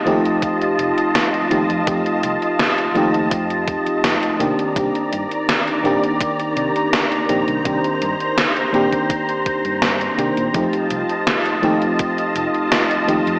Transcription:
Already playing: fm electric piano F3 A3 C4 D#4 G4, string machine F4 D#5 A5
0.05 fingered electric bass D#2, fm electric piano F3 A3 C4 D#4 G4, closed hi-hat
0.26 closed hi-hat
0.42 kick, closed hi-hat
0.62 closed hi-hat
0.79 fingered electric bass F1, closed hi-hat
0.98 closed hi-hat
1.15 snare, closed hi-hat
1.34 closed hi-hat
1.50 fingered electric bass D#2, fm electric piano F3 A3 C4 D#4 G4, closed hi-hat
1.70 fingered electric bass F2, closed hi-hat
1.85 fingered electric bass F2, fm electric piano F3 A3 C4 D#4 G4, kick, closed hi-hat
2.06 closed hi-hat
2.23 fingered electric bass C2, closed hi-hat
2.42 closed hi-hat
2.59 snare, closed hi-hat
2.78 closed hi-hat
2.94 fingered electric bass D#2, fm electric piano F3 A3 C4 D#4 G4, closed hi-hat
3.14 closed hi-hat
3.31 fingered electric bass F2, kick, closed hi-hat
3.50 closed hi-hat
3.68 kick, closed hi-hat
3.86 muted fingered electric bass stroke, closed hi-hat
4.04 fingered electric bass F2, snare, closed hi-hat
4.23 closed hi-hat
4.39 fingered electric bass C3, fm electric piano D#3 A#3 C4 D4 G4, string machine D#3 D5 A#5, closed hi-hat
4.59 closed hi-hat
4.75 fingered electric bass C2, fm electric piano D#3 A#3 C4 D4 G4, kick, closed hi-hat
4.95 closed hi-hat
5.12 fingered electric bass G2, closed hi-hat
5.31 closed hi-hat
5.49 snare, closed hi-hat
5.68 closed hi-hat
5.83 fingered electric bass A#2, fm electric piano D#3 A#3 C4 D4 G4, closed hi-hat
6.04 closed hi-hat
6.21 kick, closed hi-hat
6.40 closed hi-hat
6.57 fingered electric bass C3, closed hi-hat
6.76 closed hi-hat
6.93 snare, closed hi-hat
7.12 closed hi-hat
7.28 fingered electric bass A#1, fm electric piano D#3 A#3 C4 D4 G4, string machine C5, closed hi-hat
7.48 fingered electric bass C2, closed hi-hat
7.64 fingered electric bass C2, fm electric piano D#3 A#3 C4 D4 G4, kick, closed hi-hat
7.84 closed hi-hat
8.02 fingered electric bass G2, closed hi-hat
8.20 closed hi-hat
8.38 snare, closed hi-hat
8.57 closed hi-hat
8.72 fingered electric bass A#2, fm electric piano D#3 A#3 C4 D4 G4, closed hi-hat
8.93 kick, closed hi-hat
9.10 kick, closed hi-hat
9.29 closed hi-hat
9.46 kick, closed hi-hat
9.65 fingered electric bass G2, closed hi-hat
9.82 snare, closed hi-hat
10.01 closed hi-hat
10.17 fingered electric bass C3, fm electric piano D#3 A#3 C4 D4 G4, closed hi-hat
10.37 fingered electric bass A#2, closed hi-hat
10.54 fingered electric bass F2, fm electric piano F3 A3 C4 D#4 G4, string machine F4 D#5 A5, kick, closed hi-hat
10.73 closed hi-hat
10.91 fingered electric bass C2, closed hi-hat
11.10 closed hi-hat
11.27 snare, closed hi-hat
11.46 closed hi-hat
11.62 fingered electric bass D#2, fm electric piano F3 A3 C4 D#4 G4, closed hi-hat
11.82 closed hi-hat
11.99 kick, closed hi-hat
12.18 closed hi-hat
12.35 fingered electric bass F1, closed hi-hat
12.55 closed hi-hat
12.72 snare, closed hi-hat
12.91 closed hi-hat
13.07 fingered electric bass D#2, fm electric piano F3 A3 C4 D#4 G4, closed hi-hat
13.27 fingered electric bass F2, closed hi-hat

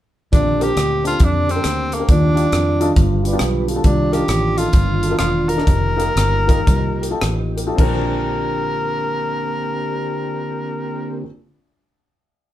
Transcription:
0.32 fingered electric bass A#1, upright piano A#2, tonewheel organ D3 A#3 C4 G4, tenor saxophone D4, kick, closed hi-hat
0.60 upright piano C4 D4 G4 A#4, tenor saxophone G4, cross-stick, closed hi-hat
0.76 fingered electric bass D2, cross-stick, closed hi-hat
1.04 upright piano C4 D4 G4 A4, tenor saxophone F4, closed hi-hat
1.20 fingered electric bass F2, kick, closed hi-hat
1.24 tenor saxophone D4
1.48 tenor saxophone C4, upright piano G4 A4, closed hi-hat
1.55 upright piano C4 D4 G4 A#4
1.64 fingered electric bass D2, cross-stick, closed hi-hat
1.91 tenor saxophone A#3, upright piano G4 A4, closed hi-hat
1.99 upright piano C4 D4 G4 A#4
2.09 fingered electric bass D#2, upright piano D#3, tonewheel organ D#3 G3 D4 F4, tenor saxophone D4, kick, closed hi-hat
2.35 upright piano D4 D#4 F4 G4, closed hi-hat
2.52 fingered electric bass F2, cross-stick, closed hi-hat
2.80 upright piano D4 D#4 F4 A4, closed hi-hat
2.96 fingered electric bass G1, upright piano G2, tonewheel organ D3 G3 B3 F4, kick, closed hi-hat
3.23 upright piano F4 G4, closed hi-hat
3.27 tonewheel organ B4 D5
3.33 upright piano B3 D4 F4 G4
3.39 fingered electric bass B1, tonewheel organ G4 B4, cross-stick, closed hi-hat
3.68 upright piano F4 A4, tonewheel organ G4, closed hi-hat
3.75 upright piano B3 D4 F4 A4
3.84 fingered electric bass C2, upright piano C3, tonewheel organ D#3 A#3 D4 F4, tenor saxophone D4, kick, closed hi-hat
4.12 upright piano D4 D#4 F4 A#4, tenor saxophone G4, cross-stick, closed hi-hat
4.28 fingered electric bass A1, cross-stick, closed hi-hat
4.57 upright piano D4 D#4 F4 A4, tenor saxophone F4, closed hi-hat
4.73 fingered electric bass G1, kick, closed hi-hat
5.02 upright piano F4 A4, closed hi-hat
5.10 upright piano D4 D#4 F4 A#4
5.19 fingered electric bass E1, tenor saxophone F4, cross-stick, closed hi-hat
5.48 upright piano F4 A#4, tenor saxophone A#4, closed hi-hat
5.57 upright piano D4 D#4 F4 A#4, cross-stick
5.67 fingered electric bass F1, tonewheel organ F3 A#3 D#4 G4, kick, closed hi-hat
5.97 upright piano D#4 F4 G4 A#4, cross-stick, closed hi-hat
6.16 fingered electric bass G1, cross-stick, closed hi-hat
6.47 upright piano D#4 F4 G4 A#4, kick, closed hi-hat
6.67 fingered electric bass C2, kick, closed hi-hat
7.01 upright piano G4 A#4, closed hi-hat
7.10 upright piano D#4 F4 G4 A4
7.21 fingered electric bass A1, cross-stick, closed hi-hat
7.56 upright piano G4 A#4, closed hi-hat
7.67 upright piano D#4 F4 G4 A4
7.76 upright piano A#1 C4 D4 G4, fingered electric bass A#1, tonewheel organ D3 A#3 C4 G4, tenor saxophone A#4, kick, crash
7.80 upright piano A#4

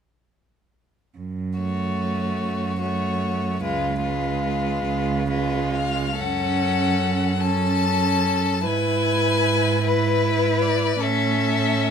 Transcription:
1.18 cello F#2
1.59 viola A3, violin F#4 C#5
2.41 cello F#2
2.81 viola A3, violin F#4 C#5
3.62 cello C#2, viola G#3, violin F4 B4
4.01 viola G#3, violin F4 B4
4.86 cello C#2
5.28 viola G#3, violin F4 B4
5.76 violin F5
6.18 cello F#2, viola C#4, violin A4 F#5
7.41 viola C#4, violin A4 A5
8.66 cello G#2, viola E4, violin B4 G#5
9.84 viola E4, violin B4
10.62 violin D5
11.00 cello A2, viola C#4, violin A4 E5

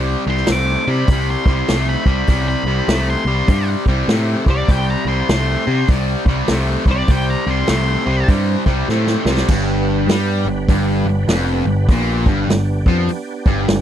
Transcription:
Already playing: picked electric bass C2, distorted electric guitar C3 G3, tonewheel organ C4 E4 G4 C5
0.27 picked electric bass C2, distorted electric guitar C3 G3, lead electric guitar C6
0.37 snare
0.46 picked electric bass C2, distorted electric guitar C3 A3, snare, open hi-hat
0.52 lead electric guitar D6
0.87 distorted electric guitar C3 G3, picked electric bass C3, lead electric guitar B5
1.08 picked electric bass C2, distorted electric guitar C3, kick, open hi-hat
1.12 distorted electric guitar G3
1.30 lead electric guitar C6
1.46 picked electric bass C2, distorted electric guitar C3 G3, kick
1.68 picked electric bass C2, distorted electric guitar C3 A3, snare, open hi-hat
1.89 lead electric guitar B5
2.06 picked electric bass C2, distorted electric guitar C3 G3, kick
2.27 picked electric bass C2, distorted electric guitar C3 G3, tonewheel organ C#4 F4 G#4, kick, open hi-hat
2.48 tonewheel organ C4 E4 G4, lead electric guitar B5
2.64 picked electric bass C2, distorted electric guitar C3 G3
2.88 picked electric bass C2, distorted electric guitar C3 A3, snare, open hi-hat
3.10 lead electric guitar C6
3.25 picked electric bass C2, distorted electric guitar C3 G3
3.48 picked electric bass G2, distorted electric guitar C3 G3, kick, open hi-hat
3.86 picked electric bass C2, distorted electric guitar C3 G3, kick
4.08 picked electric bass A2, distorted electric guitar C3 A3, snare, open hi-hat
4.46 picked electric bass C2, distorted electric guitar C3 G3, kick
4.50 lead electric guitar D5
4.67 picked electric bass C2, distorted electric guitar C3 G3, tonewheel organ C4 E4 G4 C5, kick, open hi-hat
4.71 lead electric guitar G5
4.90 lead electric guitar A#5
5.05 picked electric bass C2, distorted electric guitar C3 G3, lead electric guitar C6
5.29 picked electric bass C2, distorted electric guitar C3 A3, lead electric guitar C6, snare, open hi-hat
5.67 distorted electric guitar C3 G3, picked electric bass C3
5.88 picked electric bass C2, distorted electric guitar C3 G3, kick, open hi-hat
6.25 picked electric bass C2, distorted electric guitar C3 G3, kick
6.48 picked electric bass C2, distorted electric guitar C3 A3, snare, open hi-hat
6.86 picked electric bass C2, distorted electric guitar C3 G3, kick
6.91 lead electric guitar D5
7.08 picked electric bass C2, distorted electric guitar C3 G3, tonewheel organ C4 E4 G4 C5, lead electric guitar G5, kick, open hi-hat
7.30 lead electric guitar A#5
7.46 picked electric bass C2, distorted electric guitar C3 G3
7.51 lead electric guitar C6
7.67 picked electric bass C2, distorted electric guitar C3 A3, lead electric guitar C6, snare, open hi-hat
8.06 picked electric bass C2, distorted electric guitar C3 G3
8.28 picked electric bass G2, distorted electric guitar C3 G3, kick, open hi-hat
8.66 picked electric bass C2, distorted electric guitar C3 G3, kick
8.88 picked electric bass A2, distorted electric guitar C3 A3, snare
9.07 snare
9.25 picked electric bass C2, distorted electric guitar C3 G3, snare
9.37 snare
9.48 picked electric bass G1, distorted electric guitar G2, tonewheel organ B3 D4 G4 B4, kick, crash
10.07 picked electric bass G2, distorted electric guitar G3, snare, open hi-hat
10.45 picked electric bass G1, distorted electric guitar G2
10.69 picked electric bass G1, distorted electric guitar G2, kick, open hi-hat
11.04 picked electric bass G1
11.09 distorted electric guitar G2
11.28 picked electric bass F1, distorted electric guitar F2, snare, open hi-hat
11.65 picked electric bass G1, distorted electric guitar G2
11.88 picked electric bass A#1, distorted electric guitar A#2, tonewheel organ B3 D4 G4, kick, open hi-hat
12.26 picked electric bass G1, distorted electric guitar G2, kick
12.47 picked electric bass G1, distorted electric guitar G2, snare, open hi-hat
12.86 picked electric bass F2, distorted electric guitar F3, kick
13.08 muted picked electric bass stroke, muted distorted electric guitar stroke, open hi-hat
13.46 picked electric bass G1, distorted electric guitar G2, kick
13.68 picked electric bass G1, distorted electric guitar G2, snare, open hi-hat

